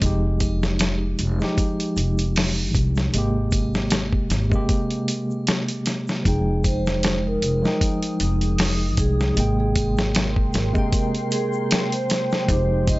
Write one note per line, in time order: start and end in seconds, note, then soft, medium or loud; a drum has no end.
0.00 1.16 F1 loud
0.00 1.35 F3 medium
0.00 1.35 G#3 medium
0.00 1.36 D#4 medium
0.00 kick loud
0.00 closed hi-hat medium
0.00 shaker soft
0.06 1.37 G4 medium
0.40 kick medium
0.40 closed hi-hat medium
0.40 triangle medium
0.40 shaker medium
0.63 snare soft
0.63 shaker soft
0.79 snare loud
0.79 closed hi-hat medium
0.79 shaker soft
1.19 1.38 F1 medium
1.19 closed hi-hat medium
1.19 shaker loud
1.38 3.09 F3 medium
1.38 3.09 G#3 medium
1.38 3.11 D#4 medium
1.38 snare soft
1.38 shaker soft
1.44 3.11 G4 loud
1.58 kick loud
1.58 closed hi-hat medium
1.58 shaker soft
1.80 closed hi-hat soft
1.96 2.75 F1 medium
1.96 closed hi-hat medium
1.96 shaker loud
2.18 closed hi-hat soft
2.18 shaker soft
2.36 snare loud
2.36 open hi-hat medium
2.36 shaker soft
2.74 3.10 C2 medium
2.74 kick loud
2.74 closed hi-hat medium
2.74 shaker medium
2.96 snare soft
2.96 shaker medium
3.13 4.28 G#1 medium
3.13 4.47 C3 medium
3.13 4.47 G#3 medium
3.13 4.48 A#3 medium
3.13 closed hi-hat medium
3.13 shaker soft
3.18 4.49 G4 loud
3.52 kick medium
3.52 closed hi-hat medium
3.52 triangle medium
3.52 shaker loud
3.74 snare medium
3.74 shaker soft
3.90 snare loud
3.90 closed hi-hat medium
3.90 shaker soft
4.13 kick medium
4.30 4.49 G#1 medium
4.30 snare soft
4.30 closed hi-hat medium
4.30 shaker loud
4.50 6.20 C3 medium
4.50 6.21 G#3 medium
4.50 6.22 A#3 medium
4.50 kick medium
4.50 shaker medium
4.55 6.23 G4 loud
4.69 kick loud
4.69 closed hi-hat medium
4.69 shaker soft
4.90 closed hi-hat soft
5.08 closed hi-hat medium
5.08 shaker medium
5.30 shaker soft
5.47 snare loud
5.47 closed hi-hat medium
5.47 shaker soft
5.68 closed hi-hat soft
5.86 snare soft
5.86 closed hi-hat medium
5.86 shaker medium
6.08 snare soft
6.08 shaker medium
6.23 7.39 F1 medium
6.23 7.58 F3 medium
6.23 7.58 G#3 medium
6.23 9.34 G#3 medium
6.23 7.59 D#4 medium
6.23 6.62 G#4 medium
6.23 12.99 G5 medium
6.23 9.34 D#6 medium
6.23 kick loud
6.23 closed hi-hat medium
6.23 shaker soft
6.28 7.60 G5 medium
6.64 7.19 C5 medium
6.64 kick medium
6.64 closed hi-hat medium
6.64 triangle medium
6.64 shaker medium
6.87 snare soft
6.87 shaker medium
7.03 snare loud
7.03 closed hi-hat medium
7.03 shaker soft
7.27 7.77 A#4 medium
7.42 7.61 F1 medium
7.42 closed hi-hat medium
7.42 shaker medium
7.62 9.32 F3 medium
7.62 9.33 G#3 medium
7.62 snare soft
7.62 shaker soft
7.66 9.34 D#4 medium
7.66 9.35 G5 loud
7.81 kick loud
7.81 closed hi-hat medium
7.81 shaker soft
8.03 closed hi-hat soft
8.20 8.98 F1 medium
8.20 closed hi-hat medium
8.20 shaker medium
8.41 closed hi-hat soft
8.41 shaker soft
8.58 snare loud
8.58 open hi-hat medium
8.58 shaker soft
8.97 9.33 C2 medium
8.97 9.53 G#4 medium
8.97 kick medium
8.97 closed hi-hat medium
8.97 shaker medium
9.20 snare soft
9.20 shaker medium
9.34 10.51 G#1 loud
9.34 10.69 C3 medium
9.34 10.70 G#3 medium
9.34 10.71 A#3 medium
9.34 12.46 A#4 medium
9.34 12.46 C6 medium
9.34 closed hi-hat medium
9.34 shaker soft
9.40 10.72 G5 medium
9.60 10.11 G#4 medium
9.76 kick medium
9.76 closed hi-hat medium
9.76 triangle medium
9.76 shaker medium
9.98 snare medium
9.98 shaker soft
10.15 snare loud
10.15 closed hi-hat medium
10.15 shaker soft
10.36 kick medium
10.54 10.73 G#1 medium
10.54 snare soft
10.54 closed hi-hat medium
10.54 shaker medium
10.73 12.43 C3 medium
10.73 12.44 G#3 medium
10.73 12.45 A#3 medium
10.73 kick medium
10.73 shaker medium
10.78 12.46 G5 loud
10.93 kick loud
10.93 closed hi-hat medium
10.93 shaker soft
11.15 closed hi-hat soft
11.32 11.86 G#4 medium
11.32 closed hi-hat medium
11.32 shaker medium
11.53 shaker soft
11.71 snare loud
11.71 closed hi-hat medium
11.71 shaker soft
11.92 12.44 C5 medium
11.92 closed hi-hat soft
12.10 snare medium
12.10 closed hi-hat medium
12.10 shaker medium
12.31 snare soft
12.31 shaker medium
12.46 12.99 F1 loud
12.46 12.99 F3 loud
12.46 12.99 G#3 medium
12.46 12.99 D#4 medium
12.46 12.85 C5 medium
12.46 12.99 D#6 medium
12.46 kick loud
12.46 closed hi-hat medium
12.46 shaker soft
12.52 12.99 G4 loud
12.88 12.99 D#5 medium
12.88 kick medium
12.88 closed hi-hat medium
12.88 triangle medium
12.88 shaker medium